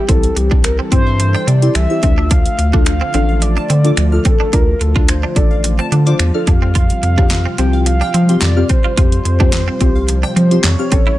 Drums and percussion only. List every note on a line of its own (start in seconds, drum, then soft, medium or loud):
0.09 kick loud
0.09 closed hi-hat medium
0.23 closed hi-hat medium
0.37 closed hi-hat medium
0.51 kick loud
0.64 finger snap loud
0.64 closed hi-hat loud
0.92 kick medium
0.92 closed hi-hat medium
1.20 closed hi-hat loud
1.48 closed hi-hat medium
1.62 closed hi-hat medium
1.75 finger snap loud
1.75 closed hi-hat medium
2.03 kick medium
2.03 closed hi-hat medium
2.31 kick loud
2.31 closed hi-hat medium
2.46 closed hi-hat medium
2.59 closed hi-hat medium
2.74 kick loud
2.86 finger snap loud
2.86 closed hi-hat loud
3.14 closed hi-hat medium
3.42 closed hi-hat loud
3.70 closed hi-hat medium
3.85 closed hi-hat medium
3.97 finger snap loud
3.97 closed hi-hat medium
4.25 kick medium
4.25 closed hi-hat medium
4.53 kick loud
4.53 closed hi-hat medium
4.81 closed hi-hat medium
4.96 kick loud
5.08 finger snap loud
5.08 closed hi-hat loud
5.36 kick medium
5.36 closed hi-hat medium
5.64 closed hi-hat loud
5.92 closed hi-hat medium
6.07 closed hi-hat medium
6.19 finger snap loud
6.19 closed hi-hat medium
6.47 kick medium
6.47 closed hi-hat medium
6.75 kick loud
6.75 closed hi-hat medium
6.90 closed hi-hat medium
7.03 closed hi-hat medium
7.18 kick loud
7.30 snare medium
7.30 clap loud
7.30 closed hi-hat loud
7.58 closed hi-hat medium
7.86 closed hi-hat loud
8.14 closed hi-hat medium
8.29 closed hi-hat medium
8.41 snare medium
8.41 clap loud
8.41 closed hi-hat medium
8.69 kick medium
8.69 closed hi-hat medium
8.97 kick loud
8.97 closed hi-hat medium
9.12 closed hi-hat medium
9.25 closed hi-hat medium
9.40 kick loud
9.53 snare medium
9.53 clap loud
9.53 closed hi-hat loud
9.81 kick medium
9.81 closed hi-hat medium
10.08 closed hi-hat loud
10.37 closed hi-hat medium
10.51 closed hi-hat medium
10.64 snare medium
10.64 clap loud
10.64 closed hi-hat medium
10.92 kick medium
10.92 closed hi-hat medium